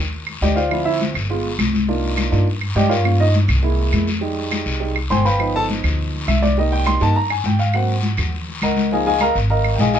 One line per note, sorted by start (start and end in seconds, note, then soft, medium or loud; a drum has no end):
0.00 0.39 D#2 medium
0.13 high conga soft
0.13 long guiro medium
0.27 high conga soft
0.27 claves medium
0.41 1.09 D2 medium
0.41 0.57 G4 medium
0.41 0.55 D5 medium
0.41 0.56 D#5 medium
0.41 0.56 G5 medium
0.41 high conga medium
0.41 short guiro medium
0.56 0.84 F4 medium
0.56 0.84 C5 medium
0.56 0.84 D5 medium
0.56 0.83 F5 medium
0.56 high conga soft
0.56 short guiro medium
0.70 1.12 F3 medium
0.70 1.13 C4 soft
0.70 0.84 E4 medium
0.70 high conga soft
0.70 long guiro medium
0.70 claves medium
0.85 1.00 E4 medium
0.85 1.00 E5 medium
0.85 high conga soft
1.00 high conga medium
1.00 short guiro medium
1.14 1.56 G1 medium
1.14 high conga soft
1.14 short guiro medium
1.14 claves medium
1.30 1.49 G#3 medium
1.30 1.50 B3 medium
1.30 1.50 F4 medium
1.30 high conga soft
1.30 long guiro medium
1.45 high conga soft
1.59 2.27 C2 medium
1.59 high conga medium
1.59 short guiro medium
1.59 claves medium
1.74 high conga medium
1.74 short guiro medium
1.88 2.30 A#3 medium
1.88 2.30 D4 soft
1.88 2.31 D#4 soft
1.88 2.31 F4 medium
1.88 high conga soft
1.88 long guiro medium
2.04 high conga soft
2.17 high conga medium
2.17 short guiro medium
2.17 claves medium
2.32 2.73 G2 medium
2.32 2.45 A#3 medium
2.32 2.45 D4 soft
2.32 2.46 D#4 soft
2.32 2.45 F4 medium
2.32 high conga soft
2.32 short guiro medium
2.47 high conga soft
2.47 long guiro medium
2.61 high conga soft
2.61 claves medium
2.75 3.44 G2 loud
2.75 2.90 G4 medium
2.75 2.91 D5 medium
2.75 2.91 D#5 medium
2.75 2.90 G5 medium
2.75 high conga medium
2.75 short guiro medium
2.89 3.04 F4 medium
2.89 3.17 A#4 medium
2.89 3.17 C#5 medium
2.89 3.17 F5 medium
2.89 high conga soft
2.89 short guiro medium
3.04 3.25 A#3 medium
3.04 3.25 C#4 soft
3.04 3.25 F4 medium
3.04 high conga soft
3.04 long guiro medium
3.04 claves medium
3.20 3.34 D#4 medium
3.20 3.34 D#5 medium
3.20 high conga soft
3.34 high conga medium
3.34 short guiro medium
3.48 3.90 C2 loud
3.48 high conga soft
3.48 short guiro medium
3.48 claves medium
3.63 4.05 G#3 medium
3.63 4.05 A#3 medium
3.63 4.06 E4 medium
3.63 high conga soft
3.63 long guiro medium
3.79 high conga soft
3.92 4.61 F2 medium
3.92 high conga medium
3.92 short guiro medium
3.92 claves medium
4.07 high conga medium
4.07 short guiro medium
4.21 4.79 G3 medium
4.21 4.79 G#3 soft
4.21 4.80 D#4 medium
4.21 high conga soft
4.21 long guiro medium
4.38 high conga soft
4.52 high conga medium
4.52 short guiro medium
4.52 claves medium
4.66 5.07 C2 medium
4.66 high conga soft
4.66 short guiro medium
4.80 4.94 G3 soft
4.80 4.94 G#3 soft
4.80 4.95 D#4 medium
4.80 high conga soft
4.80 long guiro medium
4.96 high conga soft
4.96 claves medium
5.10 5.79 G1 medium
5.10 5.25 C5 medium
5.10 5.24 G5 medium
5.10 5.25 G#5 medium
5.10 5.25 C6 medium
5.10 high conga medium
5.10 short guiro medium
5.25 5.53 B4 medium
5.25 5.53 F5 medium
5.25 5.53 G5 medium
5.25 5.53 B5 medium
5.25 high conga soft
5.25 short guiro medium
5.39 6.53 F3 soft
5.39 6.54 B3 soft
5.39 6.54 D#4 medium
5.39 high conga soft
5.39 long guiro medium
5.39 claves medium
5.55 5.65 A4 medium
5.55 5.64 A5 loud
5.55 high conga soft
5.70 high conga medium
5.70 short guiro medium
5.83 6.25 D2 medium
5.83 high conga soft
5.83 low conga medium
5.83 short guiro medium
5.83 claves medium
5.99 high conga soft
5.99 long guiro medium
6.13 high conga soft
6.28 6.96 C2 loud
6.28 6.42 E5 medium
6.28 high conga medium
6.28 short guiro medium
6.28 claves medium
6.42 6.57 D5 medium
6.42 high conga medium
6.42 short guiro medium
6.57 6.99 G3 medium
6.57 7.00 A#3 soft
6.57 7.00 D#4 medium
6.57 6.72 D#5 medium
6.57 high conga soft
6.57 long guiro medium
6.72 6.86 G5 medium
6.72 high conga soft
6.86 7.01 C6 loud
6.86 high conga medium
6.86 short guiro medium
6.86 claves medium
7.00 7.42 G2 medium
7.00 7.14 G3 soft
7.00 7.15 A#3 soft
7.00 7.15 D#4 medium
7.00 7.16 A5 medium
7.00 high conga soft
7.00 short guiro medium
7.15 7.30 A#5 loud
7.15 high conga soft
7.15 long guiro medium
7.30 7.45 G#5 medium
7.30 high conga soft
7.30 claves medium
7.44 8.12 G#2 loud
7.44 7.60 G5 medium
7.44 high conga medium
7.44 short guiro medium
7.59 7.74 F5 medium
7.59 high conga soft
7.59 short guiro medium
7.73 7.94 F#3 soft
7.73 7.94 A#3 soft
7.73 7.94 C4 medium
7.73 8.29 F#5 medium
7.73 high conga soft
7.73 long guiro medium
7.73 claves medium
7.89 high conga soft
8.03 high conga medium
8.03 short guiro medium
8.17 8.59 D#2 medium
8.17 high conga soft
8.17 low conga medium
8.17 short guiro medium
8.17 claves medium
8.33 high conga soft
8.33 long guiro medium
8.48 high conga soft
8.62 9.30 C#2 medium
8.62 8.90 A#4 medium
8.62 8.90 D#5 medium
8.62 8.90 F#5 medium
8.62 8.90 A#5 medium
8.62 high conga medium
8.62 short guiro medium
8.62 claves medium
8.77 high conga medium
8.77 short guiro medium
8.91 9.11 F3 soft
8.91 9.11 A#3 soft
8.91 9.12 D#4 medium
8.91 9.05 G#4 medium
8.91 9.05 D#5 medium
8.91 9.05 F5 medium
8.91 9.05 G#5 medium
8.91 high conga soft
8.91 long guiro medium
9.06 9.20 G#4 medium
9.06 9.20 D#5 medium
9.06 9.20 F5 medium
9.06 9.21 G#5 medium
9.06 high conga soft
9.20 9.35 A#4 medium
9.20 9.35 D#5 medium
9.20 9.35 F5 medium
9.20 9.35 A#5 medium
9.20 high conga medium
9.20 short guiro medium
9.20 claves medium
9.35 9.76 G#1 medium
9.35 short guiro medium
9.49 9.78 A#4 medium
9.49 9.77 D#5 medium
9.49 9.77 F5 medium
9.49 9.77 A#5 medium
9.49 high conga soft
9.49 long guiro medium
9.64 high conga soft
9.64 claves medium
9.76 10.00 A#1 medium
9.76 9.78 G5 medium
9.76 high conga medium
9.76 short guiro medium
9.80 9.93 G#4 medium
9.80 9.93 D#5 medium
9.80 9.93 F5 medium
9.80 9.93 G#5 medium
9.93 10.00 G#4 medium
9.93 10.00 D#5 medium
9.93 10.00 F5 medium
9.93 10.00 G#5 medium
9.93 high conga soft
9.93 short guiro medium